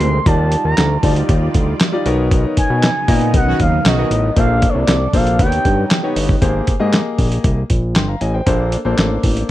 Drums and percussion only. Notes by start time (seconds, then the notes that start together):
0.01 closed hi-hat
0.26 kick, closed hi-hat
0.52 closed hi-hat
0.77 snare, clap, closed hi-hat
1.03 kick, open hi-hat
1.16 closed hi-hat
1.29 kick, closed hi-hat
1.54 kick, closed hi-hat
1.80 snare, clap, closed hi-hat
2.06 closed hi-hat
2.31 kick, closed hi-hat
2.57 kick, closed hi-hat
2.83 snare, clap, closed hi-hat
3.08 kick, open hi-hat
3.21 closed hi-hat
3.34 kick, closed hi-hat
3.60 kick, closed hi-hat
3.85 snare, clap, closed hi-hat
4.11 closed hi-hat
4.36 kick, closed hi-hat
4.62 kick, closed hi-hat
4.88 snare, clap, closed hi-hat
5.13 kick, open hi-hat
5.27 closed hi-hat
5.39 kick, closed hi-hat
5.52 closed hi-hat
5.65 kick, closed hi-hat
5.91 snare, clap, closed hi-hat
6.16 open hi-hat
6.29 kick
6.42 kick, closed hi-hat
6.67 kick, closed hi-hat
6.93 snare, clap, closed hi-hat
7.18 kick, open hi-hat
7.32 closed hi-hat
7.44 kick, closed hi-hat
7.70 kick, closed hi-hat
7.95 snare, clap, closed hi-hat
8.21 closed hi-hat
8.47 kick, closed hi-hat
8.72 closed hi-hat
8.98 snare, clap, closed hi-hat
9.23 kick, open hi-hat
9.37 closed hi-hat